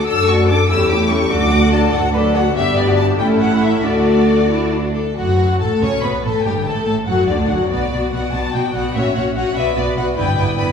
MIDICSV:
0, 0, Header, 1, 6, 480
1, 0, Start_track
1, 0, Key_signature, 2, "major"
1, 0, Tempo, 414651
1, 82, Time_signature, 6, 3, 24, 8
1, 3444, Tempo, 436999
1, 6804, Tempo, 413508
1, 12245, End_track
2, 0, Start_track
2, 0, Title_t, "Violin section"
2, 0, Program_c, 0, 48
2, 76, Note_on_c, 0, 88, 92
2, 309, Note_off_c, 0, 88, 0
2, 315, Note_on_c, 0, 85, 79
2, 552, Note_off_c, 0, 85, 0
2, 552, Note_on_c, 0, 86, 81
2, 787, Note_off_c, 0, 86, 0
2, 801, Note_on_c, 0, 88, 89
2, 1032, Note_off_c, 0, 88, 0
2, 1037, Note_on_c, 0, 86, 78
2, 1270, Note_off_c, 0, 86, 0
2, 1272, Note_on_c, 0, 85, 80
2, 1510, Note_on_c, 0, 86, 91
2, 1512, Note_off_c, 0, 85, 0
2, 1992, Note_off_c, 0, 86, 0
2, 1996, Note_on_c, 0, 81, 73
2, 2230, Note_off_c, 0, 81, 0
2, 2962, Note_on_c, 0, 76, 92
2, 3186, Note_off_c, 0, 76, 0
2, 3200, Note_on_c, 0, 74, 74
2, 3436, Note_on_c, 0, 81, 84
2, 3443, Note_off_c, 0, 74, 0
2, 3524, Note_off_c, 0, 81, 0
2, 3679, Note_on_c, 0, 79, 76
2, 3767, Note_off_c, 0, 79, 0
2, 3914, Note_on_c, 0, 78, 70
2, 4151, Note_off_c, 0, 78, 0
2, 4151, Note_on_c, 0, 76, 66
2, 4397, Note_off_c, 0, 76, 0
2, 4401, Note_on_c, 0, 74, 67
2, 5617, Note_off_c, 0, 74, 0
2, 5856, Note_on_c, 0, 78, 60
2, 6299, Note_off_c, 0, 78, 0
2, 6331, Note_on_c, 0, 81, 58
2, 6419, Note_off_c, 0, 81, 0
2, 6566, Note_on_c, 0, 85, 69
2, 6789, Note_on_c, 0, 83, 56
2, 6797, Note_off_c, 0, 85, 0
2, 7038, Note_on_c, 0, 81, 57
2, 7039, Note_off_c, 0, 83, 0
2, 7267, Note_on_c, 0, 79, 64
2, 7279, Note_off_c, 0, 81, 0
2, 7518, Note_on_c, 0, 81, 59
2, 7520, Note_off_c, 0, 79, 0
2, 7742, Note_off_c, 0, 81, 0
2, 7756, Note_on_c, 0, 81, 59
2, 7849, Note_off_c, 0, 81, 0
2, 8001, Note_on_c, 0, 78, 67
2, 8243, Note_on_c, 0, 74, 54
2, 8246, Note_off_c, 0, 78, 0
2, 8487, Note_on_c, 0, 78, 55
2, 8488, Note_off_c, 0, 74, 0
2, 8736, Note_on_c, 0, 74, 60
2, 8737, Note_off_c, 0, 78, 0
2, 9215, Note_off_c, 0, 74, 0
2, 9217, Note_on_c, 0, 78, 64
2, 9458, Note_off_c, 0, 78, 0
2, 9461, Note_on_c, 0, 81, 74
2, 9703, Note_off_c, 0, 81, 0
2, 9707, Note_on_c, 0, 79, 60
2, 9945, Note_on_c, 0, 78, 63
2, 9948, Note_off_c, 0, 79, 0
2, 10180, Note_on_c, 0, 76, 72
2, 10187, Note_off_c, 0, 78, 0
2, 10422, Note_on_c, 0, 78, 61
2, 10423, Note_off_c, 0, 76, 0
2, 10515, Note_off_c, 0, 78, 0
2, 10663, Note_on_c, 0, 78, 67
2, 10894, Note_off_c, 0, 78, 0
2, 10899, Note_on_c, 0, 76, 74
2, 11136, Note_off_c, 0, 76, 0
2, 11145, Note_on_c, 0, 74, 66
2, 11377, Note_on_c, 0, 78, 64
2, 11378, Note_off_c, 0, 74, 0
2, 11470, Note_off_c, 0, 78, 0
2, 11613, Note_on_c, 0, 79, 76
2, 12078, Note_off_c, 0, 79, 0
2, 12094, Note_on_c, 0, 83, 70
2, 12187, Note_off_c, 0, 83, 0
2, 12245, End_track
3, 0, Start_track
3, 0, Title_t, "Violin section"
3, 0, Program_c, 1, 48
3, 82, Note_on_c, 1, 69, 52
3, 83, Note_off_c, 1, 69, 0
3, 83, Note_on_c, 1, 69, 51
3, 301, Note_off_c, 1, 69, 0
3, 320, Note_on_c, 1, 66, 48
3, 328, Note_on_c, 1, 74, 47
3, 544, Note_on_c, 1, 69, 47
3, 551, Note_off_c, 1, 69, 0
3, 551, Note_on_c, 1, 69, 48
3, 555, Note_off_c, 1, 66, 0
3, 559, Note_off_c, 1, 74, 0
3, 784, Note_off_c, 1, 69, 0
3, 790, Note_on_c, 1, 64, 51
3, 798, Note_on_c, 1, 69, 48
3, 1015, Note_off_c, 1, 64, 0
3, 1019, Note_off_c, 1, 69, 0
3, 1030, Note_on_c, 1, 73, 49
3, 1037, Note_on_c, 1, 67, 51
3, 1262, Note_on_c, 1, 64, 50
3, 1264, Note_on_c, 1, 69, 50
3, 1271, Note_off_c, 1, 73, 0
3, 1275, Note_off_c, 1, 67, 0
3, 1487, Note_off_c, 1, 69, 0
3, 1501, Note_on_c, 1, 69, 59
3, 1503, Note_on_c, 1, 74, 56
3, 1507, Note_off_c, 1, 64, 0
3, 1730, Note_off_c, 1, 69, 0
3, 1731, Note_off_c, 1, 74, 0
3, 1749, Note_on_c, 1, 66, 54
3, 1751, Note_on_c, 1, 78, 52
3, 1992, Note_off_c, 1, 66, 0
3, 1992, Note_off_c, 1, 78, 0
3, 1995, Note_on_c, 1, 74, 55
3, 1998, Note_on_c, 1, 69, 55
3, 2231, Note_on_c, 1, 66, 57
3, 2234, Note_off_c, 1, 74, 0
3, 2235, Note_off_c, 1, 69, 0
3, 2239, Note_on_c, 1, 78, 54
3, 2469, Note_on_c, 1, 69, 53
3, 2469, Note_on_c, 1, 74, 52
3, 2472, Note_off_c, 1, 66, 0
3, 2476, Note_off_c, 1, 78, 0
3, 2695, Note_off_c, 1, 69, 0
3, 2695, Note_off_c, 1, 74, 0
3, 2721, Note_on_c, 1, 66, 48
3, 2721, Note_on_c, 1, 78, 50
3, 2960, Note_off_c, 1, 66, 0
3, 2960, Note_off_c, 1, 78, 0
3, 2964, Note_on_c, 1, 67, 60
3, 2967, Note_on_c, 1, 74, 63
3, 3057, Note_off_c, 1, 67, 0
3, 3321, Note_on_c, 1, 66, 53
3, 3414, Note_off_c, 1, 66, 0
3, 3638, Note_off_c, 1, 74, 0
3, 3681, Note_on_c, 1, 64, 57
3, 3683, Note_on_c, 1, 69, 53
3, 4387, Note_off_c, 1, 64, 0
3, 4390, Note_off_c, 1, 69, 0
3, 4403, Note_on_c, 1, 69, 51
3, 4407, Note_on_c, 1, 66, 51
3, 5070, Note_off_c, 1, 69, 0
3, 5086, Note_off_c, 1, 66, 0
3, 5131, Note_on_c, 1, 64, 57
3, 5356, Note_off_c, 1, 64, 0
3, 5374, Note_on_c, 1, 62, 47
3, 5613, Note_on_c, 1, 69, 50
3, 5618, Note_off_c, 1, 62, 0
3, 5857, Note_off_c, 1, 69, 0
3, 5862, Note_on_c, 1, 66, 58
3, 6303, Note_off_c, 1, 66, 0
3, 6341, Note_on_c, 1, 69, 57
3, 6568, Note_off_c, 1, 69, 0
3, 6579, Note_on_c, 1, 73, 63
3, 6809, Note_off_c, 1, 73, 0
3, 6812, Note_on_c, 1, 71, 51
3, 7051, Note_off_c, 1, 71, 0
3, 7058, Note_on_c, 1, 69, 52
3, 7289, Note_off_c, 1, 69, 0
3, 7299, Note_on_c, 1, 67, 62
3, 7392, Note_off_c, 1, 67, 0
3, 7548, Note_on_c, 1, 69, 57
3, 7771, Note_off_c, 1, 69, 0
3, 7785, Note_on_c, 1, 69, 57
3, 7878, Note_off_c, 1, 69, 0
3, 8032, Note_on_c, 1, 66, 56
3, 8261, Note_off_c, 1, 66, 0
3, 8276, Note_on_c, 1, 62, 50
3, 8509, Note_off_c, 1, 62, 0
3, 8520, Note_on_c, 1, 66, 49
3, 8753, Note_off_c, 1, 66, 0
3, 8765, Note_on_c, 1, 66, 47
3, 8767, Note_on_c, 1, 74, 50
3, 8979, Note_off_c, 1, 66, 0
3, 8985, Note_off_c, 1, 74, 0
3, 8992, Note_on_c, 1, 66, 41
3, 8999, Note_on_c, 1, 74, 41
3, 9224, Note_off_c, 1, 66, 0
3, 9227, Note_off_c, 1, 74, 0
3, 9238, Note_on_c, 1, 66, 42
3, 9241, Note_on_c, 1, 74, 43
3, 9460, Note_off_c, 1, 66, 0
3, 9463, Note_off_c, 1, 74, 0
3, 9474, Note_on_c, 1, 66, 43
3, 9476, Note_on_c, 1, 74, 40
3, 9701, Note_off_c, 1, 66, 0
3, 9703, Note_off_c, 1, 74, 0
3, 9714, Note_on_c, 1, 66, 41
3, 9717, Note_on_c, 1, 74, 45
3, 9927, Note_off_c, 1, 66, 0
3, 9934, Note_off_c, 1, 74, 0
3, 9941, Note_on_c, 1, 66, 39
3, 9947, Note_on_c, 1, 74, 41
3, 10174, Note_off_c, 1, 66, 0
3, 10184, Note_off_c, 1, 74, 0
3, 10188, Note_on_c, 1, 66, 48
3, 10191, Note_on_c, 1, 73, 51
3, 10420, Note_off_c, 1, 73, 0
3, 10422, Note_off_c, 1, 66, 0
3, 10434, Note_on_c, 1, 73, 46
3, 10435, Note_on_c, 1, 66, 48
3, 10654, Note_off_c, 1, 66, 0
3, 10657, Note_off_c, 1, 73, 0
3, 10668, Note_on_c, 1, 66, 50
3, 10671, Note_on_c, 1, 73, 49
3, 10896, Note_off_c, 1, 66, 0
3, 10898, Note_off_c, 1, 73, 0
3, 10902, Note_on_c, 1, 74, 46
3, 10903, Note_on_c, 1, 71, 49
3, 11126, Note_off_c, 1, 74, 0
3, 11129, Note_off_c, 1, 71, 0
3, 11140, Note_on_c, 1, 74, 44
3, 11143, Note_on_c, 1, 71, 44
3, 11360, Note_off_c, 1, 74, 0
3, 11363, Note_off_c, 1, 71, 0
3, 11374, Note_on_c, 1, 74, 46
3, 11377, Note_on_c, 1, 71, 45
3, 11588, Note_off_c, 1, 74, 0
3, 11589, Note_off_c, 1, 71, 0
3, 11602, Note_on_c, 1, 74, 53
3, 11603, Note_on_c, 1, 71, 58
3, 11828, Note_off_c, 1, 71, 0
3, 11831, Note_off_c, 1, 74, 0
3, 11842, Note_on_c, 1, 71, 48
3, 11845, Note_on_c, 1, 74, 50
3, 12053, Note_off_c, 1, 71, 0
3, 12054, Note_off_c, 1, 74, 0
3, 12067, Note_on_c, 1, 71, 55
3, 12068, Note_on_c, 1, 74, 52
3, 12245, Note_off_c, 1, 71, 0
3, 12245, Note_off_c, 1, 74, 0
3, 12245, End_track
4, 0, Start_track
4, 0, Title_t, "Viola section"
4, 0, Program_c, 2, 48
4, 77, Note_on_c, 2, 54, 52
4, 80, Note_on_c, 2, 62, 49
4, 298, Note_off_c, 2, 54, 0
4, 299, Note_off_c, 2, 62, 0
4, 320, Note_on_c, 2, 57, 50
4, 325, Note_on_c, 2, 66, 47
4, 555, Note_off_c, 2, 57, 0
4, 557, Note_off_c, 2, 66, 0
4, 561, Note_on_c, 2, 54, 48
4, 562, Note_on_c, 2, 62, 45
4, 793, Note_on_c, 2, 55, 54
4, 796, Note_off_c, 2, 54, 0
4, 796, Note_on_c, 2, 61, 53
4, 797, Note_off_c, 2, 62, 0
4, 1016, Note_off_c, 2, 55, 0
4, 1018, Note_off_c, 2, 61, 0
4, 1034, Note_on_c, 2, 57, 49
4, 1036, Note_on_c, 2, 64, 51
4, 1273, Note_off_c, 2, 57, 0
4, 1274, Note_off_c, 2, 64, 0
4, 1278, Note_on_c, 2, 55, 53
4, 1283, Note_on_c, 2, 61, 52
4, 1515, Note_off_c, 2, 55, 0
4, 1517, Note_off_c, 2, 61, 0
4, 1521, Note_on_c, 2, 62, 55
4, 1523, Note_on_c, 2, 54, 52
4, 1740, Note_off_c, 2, 62, 0
4, 1742, Note_off_c, 2, 54, 0
4, 1768, Note_on_c, 2, 57, 56
4, 1769, Note_on_c, 2, 66, 54
4, 2001, Note_off_c, 2, 57, 0
4, 2002, Note_off_c, 2, 66, 0
4, 2003, Note_on_c, 2, 62, 52
4, 2004, Note_on_c, 2, 54, 53
4, 2238, Note_off_c, 2, 62, 0
4, 2239, Note_off_c, 2, 54, 0
4, 2241, Note_on_c, 2, 57, 56
4, 2241, Note_on_c, 2, 66, 57
4, 2477, Note_off_c, 2, 57, 0
4, 2477, Note_off_c, 2, 66, 0
4, 2479, Note_on_c, 2, 54, 54
4, 2479, Note_on_c, 2, 62, 59
4, 2701, Note_off_c, 2, 54, 0
4, 2701, Note_off_c, 2, 62, 0
4, 2720, Note_on_c, 2, 57, 55
4, 2720, Note_on_c, 2, 66, 57
4, 2959, Note_on_c, 2, 59, 57
4, 2960, Note_off_c, 2, 57, 0
4, 2960, Note_off_c, 2, 66, 0
4, 2966, Note_on_c, 2, 62, 56
4, 3634, Note_off_c, 2, 59, 0
4, 3638, Note_off_c, 2, 62, 0
4, 3676, Note_on_c, 2, 61, 57
4, 3678, Note_on_c, 2, 57, 57
4, 4382, Note_off_c, 2, 57, 0
4, 4394, Note_on_c, 2, 62, 49
4, 4395, Note_on_c, 2, 57, 49
4, 4399, Note_off_c, 2, 61, 0
4, 5602, Note_off_c, 2, 57, 0
4, 5626, Note_off_c, 2, 62, 0
4, 5860, Note_on_c, 2, 54, 51
4, 6302, Note_off_c, 2, 54, 0
4, 6325, Note_on_c, 2, 57, 55
4, 6561, Note_on_c, 2, 61, 65
4, 6565, Note_off_c, 2, 57, 0
4, 6798, Note_on_c, 2, 59, 53
4, 6799, Note_off_c, 2, 61, 0
4, 7044, Note_off_c, 2, 59, 0
4, 7053, Note_on_c, 2, 57, 52
4, 7146, Note_off_c, 2, 57, 0
4, 7292, Note_on_c, 2, 55, 55
4, 7385, Note_off_c, 2, 55, 0
4, 7532, Note_on_c, 2, 57, 57
4, 7759, Note_off_c, 2, 57, 0
4, 7772, Note_on_c, 2, 57, 51
4, 7865, Note_off_c, 2, 57, 0
4, 8005, Note_on_c, 2, 54, 59
4, 8248, Note_off_c, 2, 54, 0
4, 8252, Note_on_c, 2, 50, 54
4, 8498, Note_off_c, 2, 50, 0
4, 8504, Note_on_c, 2, 54, 57
4, 8740, Note_off_c, 2, 54, 0
4, 8746, Note_on_c, 2, 59, 45
4, 8749, Note_on_c, 2, 66, 43
4, 8975, Note_off_c, 2, 59, 0
4, 8976, Note_off_c, 2, 66, 0
4, 8989, Note_on_c, 2, 59, 40
4, 8990, Note_on_c, 2, 66, 41
4, 9216, Note_off_c, 2, 59, 0
4, 9217, Note_off_c, 2, 66, 0
4, 9230, Note_on_c, 2, 59, 39
4, 9231, Note_on_c, 2, 66, 41
4, 9453, Note_off_c, 2, 59, 0
4, 9453, Note_off_c, 2, 66, 0
4, 9467, Note_on_c, 2, 59, 46
4, 9467, Note_on_c, 2, 66, 46
4, 9702, Note_off_c, 2, 59, 0
4, 9702, Note_off_c, 2, 66, 0
4, 9715, Note_on_c, 2, 66, 45
4, 9717, Note_on_c, 2, 59, 47
4, 9939, Note_off_c, 2, 59, 0
4, 9939, Note_off_c, 2, 66, 0
4, 9953, Note_on_c, 2, 59, 47
4, 9953, Note_on_c, 2, 66, 46
4, 10186, Note_off_c, 2, 59, 0
4, 10186, Note_off_c, 2, 66, 0
4, 10194, Note_on_c, 2, 61, 45
4, 10198, Note_on_c, 2, 66, 44
4, 10416, Note_off_c, 2, 61, 0
4, 10417, Note_off_c, 2, 66, 0
4, 10430, Note_on_c, 2, 61, 46
4, 10431, Note_on_c, 2, 66, 44
4, 10657, Note_off_c, 2, 61, 0
4, 10661, Note_off_c, 2, 66, 0
4, 10671, Note_on_c, 2, 61, 43
4, 10672, Note_on_c, 2, 66, 43
4, 10892, Note_off_c, 2, 66, 0
4, 10898, Note_off_c, 2, 61, 0
4, 10906, Note_on_c, 2, 66, 50
4, 10908, Note_on_c, 2, 59, 48
4, 11122, Note_off_c, 2, 66, 0
4, 11124, Note_off_c, 2, 59, 0
4, 11136, Note_on_c, 2, 66, 49
4, 11138, Note_on_c, 2, 59, 49
4, 11366, Note_off_c, 2, 66, 0
4, 11370, Note_off_c, 2, 59, 0
4, 11380, Note_on_c, 2, 66, 48
4, 11381, Note_on_c, 2, 59, 49
4, 11595, Note_off_c, 2, 59, 0
4, 11608, Note_on_c, 2, 64, 52
4, 11609, Note_off_c, 2, 66, 0
4, 11609, Note_on_c, 2, 59, 51
4, 11830, Note_off_c, 2, 59, 0
4, 11831, Note_off_c, 2, 64, 0
4, 11844, Note_on_c, 2, 59, 49
4, 11845, Note_on_c, 2, 64, 48
4, 12067, Note_off_c, 2, 59, 0
4, 12070, Note_off_c, 2, 64, 0
4, 12081, Note_on_c, 2, 59, 46
4, 12084, Note_on_c, 2, 64, 51
4, 12245, Note_off_c, 2, 59, 0
4, 12245, Note_off_c, 2, 64, 0
4, 12245, End_track
5, 0, Start_track
5, 0, Title_t, "Cello section"
5, 0, Program_c, 3, 48
5, 87, Note_on_c, 3, 69, 64
5, 781, Note_off_c, 3, 69, 0
5, 795, Note_on_c, 3, 67, 60
5, 1499, Note_off_c, 3, 67, 0
5, 1515, Note_on_c, 3, 66, 62
5, 2220, Note_off_c, 3, 66, 0
5, 2233, Note_on_c, 3, 69, 68
5, 2326, Note_off_c, 3, 69, 0
5, 2474, Note_on_c, 3, 71, 66
5, 2567, Note_off_c, 3, 71, 0
5, 2714, Note_on_c, 3, 69, 67
5, 2806, Note_off_c, 3, 69, 0
5, 2957, Note_on_c, 3, 67, 70
5, 3663, Note_off_c, 3, 67, 0
5, 3678, Note_on_c, 3, 64, 56
5, 4400, Note_off_c, 3, 64, 0
5, 4406, Note_on_c, 3, 66, 51
5, 5475, Note_off_c, 3, 66, 0
5, 5857, Note_on_c, 3, 42, 53
5, 6300, Note_off_c, 3, 42, 0
5, 6333, Note_on_c, 3, 45, 52
5, 6421, Note_off_c, 3, 45, 0
5, 6564, Note_on_c, 3, 49, 59
5, 6652, Note_off_c, 3, 49, 0
5, 6800, Note_on_c, 3, 47, 44
5, 6893, Note_off_c, 3, 47, 0
5, 7044, Note_on_c, 3, 45, 57
5, 7137, Note_off_c, 3, 45, 0
5, 7280, Note_on_c, 3, 43, 58
5, 7522, Note_off_c, 3, 43, 0
5, 7522, Note_on_c, 3, 45, 52
5, 7753, Note_off_c, 3, 45, 0
5, 7767, Note_on_c, 3, 45, 54
5, 8007, Note_off_c, 3, 45, 0
5, 8007, Note_on_c, 3, 42, 54
5, 8248, Note_off_c, 3, 42, 0
5, 8249, Note_on_c, 3, 38, 51
5, 8491, Note_off_c, 3, 38, 0
5, 8497, Note_on_c, 3, 42, 53
5, 8742, Note_off_c, 3, 42, 0
5, 8746, Note_on_c, 3, 47, 50
5, 8839, Note_off_c, 3, 47, 0
5, 8988, Note_on_c, 3, 47, 44
5, 9081, Note_off_c, 3, 47, 0
5, 9227, Note_on_c, 3, 47, 47
5, 9320, Note_off_c, 3, 47, 0
5, 9472, Note_on_c, 3, 47, 50
5, 9565, Note_off_c, 3, 47, 0
5, 9704, Note_on_c, 3, 47, 46
5, 9797, Note_off_c, 3, 47, 0
5, 9947, Note_on_c, 3, 47, 49
5, 10039, Note_off_c, 3, 47, 0
5, 10188, Note_on_c, 3, 46, 57
5, 10280, Note_off_c, 3, 46, 0
5, 10428, Note_on_c, 3, 46, 49
5, 10521, Note_off_c, 3, 46, 0
5, 10661, Note_on_c, 3, 46, 49
5, 10754, Note_off_c, 3, 46, 0
5, 10890, Note_on_c, 3, 47, 51
5, 10983, Note_off_c, 3, 47, 0
5, 11133, Note_on_c, 3, 47, 50
5, 11226, Note_off_c, 3, 47, 0
5, 11366, Note_on_c, 3, 47, 53
5, 11459, Note_off_c, 3, 47, 0
5, 11603, Note_on_c, 3, 43, 58
5, 11696, Note_off_c, 3, 43, 0
5, 11838, Note_on_c, 3, 43, 52
5, 11931, Note_off_c, 3, 43, 0
5, 12076, Note_on_c, 3, 43, 58
5, 12169, Note_off_c, 3, 43, 0
5, 12245, End_track
6, 0, Start_track
6, 0, Title_t, "Double bass section"
6, 0, Program_c, 4, 48
6, 79, Note_on_c, 4, 42, 59
6, 706, Note_off_c, 4, 42, 0
6, 791, Note_on_c, 4, 40, 65
6, 1427, Note_off_c, 4, 40, 0
6, 1513, Note_on_c, 4, 38, 71
6, 2149, Note_off_c, 4, 38, 0
6, 2232, Note_on_c, 4, 38, 73
6, 2871, Note_off_c, 4, 38, 0
6, 2956, Note_on_c, 4, 31, 62
6, 3633, Note_off_c, 4, 31, 0
6, 3680, Note_on_c, 4, 33, 62
6, 4399, Note_on_c, 4, 38, 51
6, 4401, Note_off_c, 4, 33, 0
6, 5604, Note_off_c, 4, 38, 0
6, 5856, Note_on_c, 4, 30, 55
6, 6299, Note_off_c, 4, 30, 0
6, 6324, Note_on_c, 4, 33, 51
6, 6412, Note_off_c, 4, 33, 0
6, 6561, Note_on_c, 4, 37, 63
6, 6649, Note_off_c, 4, 37, 0
6, 6791, Note_on_c, 4, 35, 49
6, 6883, Note_off_c, 4, 35, 0
6, 7036, Note_on_c, 4, 33, 54
6, 7129, Note_off_c, 4, 33, 0
6, 7285, Note_on_c, 4, 31, 55
6, 7523, Note_on_c, 4, 33, 54
6, 7524, Note_off_c, 4, 31, 0
6, 7749, Note_off_c, 4, 33, 0
6, 7763, Note_on_c, 4, 33, 52
6, 8005, Note_off_c, 4, 33, 0
6, 8012, Note_on_c, 4, 30, 61
6, 8249, Note_on_c, 4, 38, 53
6, 8251, Note_off_c, 4, 30, 0
6, 8491, Note_off_c, 4, 38, 0
6, 8496, Note_on_c, 4, 30, 58
6, 8737, Note_on_c, 4, 35, 46
6, 8741, Note_off_c, 4, 30, 0
6, 8830, Note_off_c, 4, 35, 0
6, 8976, Note_on_c, 4, 35, 47
6, 9069, Note_off_c, 4, 35, 0
6, 9215, Note_on_c, 4, 35, 47
6, 9308, Note_off_c, 4, 35, 0
6, 9466, Note_on_c, 4, 35, 51
6, 9559, Note_off_c, 4, 35, 0
6, 9707, Note_on_c, 4, 35, 49
6, 9800, Note_off_c, 4, 35, 0
6, 9943, Note_on_c, 4, 35, 52
6, 10036, Note_off_c, 4, 35, 0
6, 10187, Note_on_c, 4, 34, 51
6, 10280, Note_off_c, 4, 34, 0
6, 10428, Note_on_c, 4, 34, 53
6, 10521, Note_off_c, 4, 34, 0
6, 10662, Note_on_c, 4, 34, 49
6, 10755, Note_off_c, 4, 34, 0
6, 10901, Note_on_c, 4, 35, 56
6, 10994, Note_off_c, 4, 35, 0
6, 11137, Note_on_c, 4, 35, 54
6, 11230, Note_off_c, 4, 35, 0
6, 11376, Note_on_c, 4, 35, 54
6, 11469, Note_off_c, 4, 35, 0
6, 11615, Note_on_c, 4, 31, 55
6, 11708, Note_off_c, 4, 31, 0
6, 11850, Note_on_c, 4, 31, 55
6, 11943, Note_off_c, 4, 31, 0
6, 12093, Note_on_c, 4, 31, 52
6, 12186, Note_off_c, 4, 31, 0
6, 12245, End_track
0, 0, End_of_file